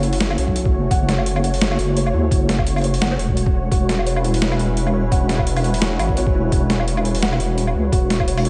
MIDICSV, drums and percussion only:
0, 0, Header, 1, 2, 480
1, 0, Start_track
1, 0, Tempo, 350877
1, 1242, Time_signature, 4, 2, 24, 8
1, 11620, End_track
2, 0, Start_track
2, 0, Title_t, "Drums"
2, 40, Note_on_c, 9, 42, 70
2, 173, Note_on_c, 9, 46, 64
2, 177, Note_off_c, 9, 42, 0
2, 280, Note_on_c, 9, 38, 125
2, 280, Note_on_c, 9, 42, 85
2, 310, Note_off_c, 9, 46, 0
2, 415, Note_on_c, 9, 77, 83
2, 417, Note_off_c, 9, 38, 0
2, 417, Note_off_c, 9, 42, 0
2, 520, Note_on_c, 9, 42, 68
2, 552, Note_off_c, 9, 77, 0
2, 656, Note_on_c, 9, 36, 66
2, 657, Note_off_c, 9, 42, 0
2, 763, Note_on_c, 9, 42, 85
2, 793, Note_off_c, 9, 36, 0
2, 896, Note_on_c, 9, 36, 109
2, 900, Note_off_c, 9, 42, 0
2, 1032, Note_off_c, 9, 36, 0
2, 1243, Note_on_c, 9, 36, 126
2, 1246, Note_on_c, 9, 42, 83
2, 1379, Note_off_c, 9, 36, 0
2, 1383, Note_off_c, 9, 42, 0
2, 1486, Note_on_c, 9, 38, 66
2, 1486, Note_on_c, 9, 42, 64
2, 1620, Note_on_c, 9, 77, 54
2, 1623, Note_off_c, 9, 38, 0
2, 1623, Note_off_c, 9, 42, 0
2, 1727, Note_on_c, 9, 42, 83
2, 1756, Note_off_c, 9, 77, 0
2, 1862, Note_on_c, 9, 77, 64
2, 1864, Note_off_c, 9, 42, 0
2, 1970, Note_on_c, 9, 42, 70
2, 1998, Note_off_c, 9, 77, 0
2, 2104, Note_on_c, 9, 46, 65
2, 2106, Note_off_c, 9, 42, 0
2, 2209, Note_on_c, 9, 38, 127
2, 2209, Note_on_c, 9, 42, 81
2, 2241, Note_off_c, 9, 46, 0
2, 2343, Note_on_c, 9, 77, 79
2, 2346, Note_off_c, 9, 38, 0
2, 2346, Note_off_c, 9, 42, 0
2, 2447, Note_on_c, 9, 42, 70
2, 2480, Note_off_c, 9, 77, 0
2, 2584, Note_off_c, 9, 42, 0
2, 2690, Note_on_c, 9, 42, 82
2, 2824, Note_on_c, 9, 77, 53
2, 2827, Note_off_c, 9, 42, 0
2, 2961, Note_off_c, 9, 77, 0
2, 3164, Note_on_c, 9, 36, 125
2, 3169, Note_on_c, 9, 42, 81
2, 3301, Note_off_c, 9, 36, 0
2, 3306, Note_off_c, 9, 42, 0
2, 3407, Note_on_c, 9, 38, 64
2, 3407, Note_on_c, 9, 42, 60
2, 3538, Note_on_c, 9, 36, 66
2, 3541, Note_on_c, 9, 77, 52
2, 3544, Note_off_c, 9, 38, 0
2, 3544, Note_off_c, 9, 42, 0
2, 3647, Note_on_c, 9, 42, 80
2, 3675, Note_off_c, 9, 36, 0
2, 3678, Note_off_c, 9, 77, 0
2, 3780, Note_on_c, 9, 46, 17
2, 3780, Note_on_c, 9, 77, 63
2, 3784, Note_off_c, 9, 42, 0
2, 3806, Note_off_c, 9, 46, 0
2, 3806, Note_on_c, 9, 46, 23
2, 3851, Note_off_c, 9, 46, 0
2, 3851, Note_on_c, 9, 46, 29
2, 3885, Note_on_c, 9, 42, 65
2, 3917, Note_off_c, 9, 77, 0
2, 3988, Note_off_c, 9, 46, 0
2, 4020, Note_on_c, 9, 46, 66
2, 4022, Note_off_c, 9, 42, 0
2, 4128, Note_on_c, 9, 38, 126
2, 4128, Note_on_c, 9, 42, 79
2, 4157, Note_off_c, 9, 46, 0
2, 4260, Note_on_c, 9, 77, 77
2, 4264, Note_off_c, 9, 38, 0
2, 4264, Note_off_c, 9, 42, 0
2, 4369, Note_on_c, 9, 42, 66
2, 4396, Note_off_c, 9, 77, 0
2, 4498, Note_on_c, 9, 36, 65
2, 4506, Note_off_c, 9, 42, 0
2, 4609, Note_on_c, 9, 42, 78
2, 4634, Note_off_c, 9, 36, 0
2, 4737, Note_on_c, 9, 36, 117
2, 4746, Note_off_c, 9, 42, 0
2, 4874, Note_off_c, 9, 36, 0
2, 5083, Note_on_c, 9, 36, 119
2, 5086, Note_on_c, 9, 42, 79
2, 5220, Note_off_c, 9, 36, 0
2, 5222, Note_off_c, 9, 42, 0
2, 5324, Note_on_c, 9, 38, 61
2, 5324, Note_on_c, 9, 42, 59
2, 5457, Note_on_c, 9, 77, 52
2, 5461, Note_off_c, 9, 38, 0
2, 5461, Note_off_c, 9, 42, 0
2, 5562, Note_on_c, 9, 42, 77
2, 5594, Note_off_c, 9, 77, 0
2, 5697, Note_on_c, 9, 77, 61
2, 5698, Note_off_c, 9, 42, 0
2, 5806, Note_on_c, 9, 42, 62
2, 5833, Note_off_c, 9, 77, 0
2, 5937, Note_on_c, 9, 46, 67
2, 5943, Note_off_c, 9, 42, 0
2, 6045, Note_on_c, 9, 38, 122
2, 6045, Note_on_c, 9, 42, 77
2, 6074, Note_off_c, 9, 46, 0
2, 6179, Note_on_c, 9, 77, 77
2, 6182, Note_off_c, 9, 38, 0
2, 6182, Note_off_c, 9, 42, 0
2, 6285, Note_on_c, 9, 42, 64
2, 6316, Note_off_c, 9, 77, 0
2, 6422, Note_off_c, 9, 42, 0
2, 6524, Note_on_c, 9, 42, 77
2, 6657, Note_on_c, 9, 77, 52
2, 6661, Note_off_c, 9, 42, 0
2, 6794, Note_off_c, 9, 77, 0
2, 7000, Note_on_c, 9, 36, 119
2, 7003, Note_on_c, 9, 42, 76
2, 7137, Note_off_c, 9, 36, 0
2, 7140, Note_off_c, 9, 42, 0
2, 7241, Note_on_c, 9, 38, 59
2, 7241, Note_on_c, 9, 42, 58
2, 7374, Note_on_c, 9, 36, 62
2, 7374, Note_on_c, 9, 77, 54
2, 7377, Note_off_c, 9, 38, 0
2, 7377, Note_off_c, 9, 42, 0
2, 7480, Note_on_c, 9, 42, 76
2, 7510, Note_off_c, 9, 36, 0
2, 7510, Note_off_c, 9, 77, 0
2, 7613, Note_on_c, 9, 46, 41
2, 7613, Note_on_c, 9, 77, 63
2, 7616, Note_off_c, 9, 42, 0
2, 7719, Note_on_c, 9, 42, 63
2, 7750, Note_off_c, 9, 46, 0
2, 7750, Note_off_c, 9, 77, 0
2, 7852, Note_on_c, 9, 46, 71
2, 7856, Note_off_c, 9, 42, 0
2, 7958, Note_on_c, 9, 38, 116
2, 7958, Note_on_c, 9, 42, 79
2, 7989, Note_off_c, 9, 46, 0
2, 8095, Note_off_c, 9, 38, 0
2, 8095, Note_off_c, 9, 42, 0
2, 8200, Note_on_c, 9, 42, 64
2, 8200, Note_on_c, 9, 77, 82
2, 8332, Note_on_c, 9, 36, 60
2, 8337, Note_off_c, 9, 42, 0
2, 8337, Note_off_c, 9, 77, 0
2, 8439, Note_on_c, 9, 42, 76
2, 8469, Note_off_c, 9, 36, 0
2, 8572, Note_on_c, 9, 36, 106
2, 8576, Note_off_c, 9, 42, 0
2, 8709, Note_off_c, 9, 36, 0
2, 8918, Note_on_c, 9, 36, 117
2, 8922, Note_on_c, 9, 42, 78
2, 9055, Note_off_c, 9, 36, 0
2, 9059, Note_off_c, 9, 42, 0
2, 9164, Note_on_c, 9, 38, 60
2, 9164, Note_on_c, 9, 42, 58
2, 9299, Note_on_c, 9, 77, 57
2, 9301, Note_off_c, 9, 38, 0
2, 9301, Note_off_c, 9, 42, 0
2, 9407, Note_on_c, 9, 42, 80
2, 9436, Note_off_c, 9, 77, 0
2, 9539, Note_on_c, 9, 77, 67
2, 9544, Note_off_c, 9, 42, 0
2, 9645, Note_on_c, 9, 42, 64
2, 9675, Note_off_c, 9, 77, 0
2, 9777, Note_on_c, 9, 46, 70
2, 9782, Note_off_c, 9, 42, 0
2, 9884, Note_on_c, 9, 38, 118
2, 9884, Note_on_c, 9, 42, 78
2, 9913, Note_off_c, 9, 46, 0
2, 10019, Note_on_c, 9, 77, 82
2, 10021, Note_off_c, 9, 38, 0
2, 10021, Note_off_c, 9, 42, 0
2, 10123, Note_on_c, 9, 42, 65
2, 10156, Note_off_c, 9, 77, 0
2, 10260, Note_off_c, 9, 42, 0
2, 10365, Note_on_c, 9, 42, 81
2, 10497, Note_on_c, 9, 77, 57
2, 10502, Note_off_c, 9, 42, 0
2, 10634, Note_off_c, 9, 77, 0
2, 10840, Note_on_c, 9, 36, 120
2, 10844, Note_on_c, 9, 42, 82
2, 10977, Note_off_c, 9, 36, 0
2, 10981, Note_off_c, 9, 42, 0
2, 11085, Note_on_c, 9, 38, 60
2, 11085, Note_on_c, 9, 42, 63
2, 11215, Note_on_c, 9, 36, 61
2, 11218, Note_on_c, 9, 77, 59
2, 11222, Note_off_c, 9, 38, 0
2, 11222, Note_off_c, 9, 42, 0
2, 11323, Note_on_c, 9, 42, 80
2, 11352, Note_off_c, 9, 36, 0
2, 11355, Note_off_c, 9, 77, 0
2, 11457, Note_on_c, 9, 46, 40
2, 11457, Note_on_c, 9, 77, 68
2, 11460, Note_off_c, 9, 42, 0
2, 11561, Note_on_c, 9, 42, 66
2, 11594, Note_off_c, 9, 46, 0
2, 11594, Note_off_c, 9, 77, 0
2, 11620, Note_off_c, 9, 42, 0
2, 11620, End_track
0, 0, End_of_file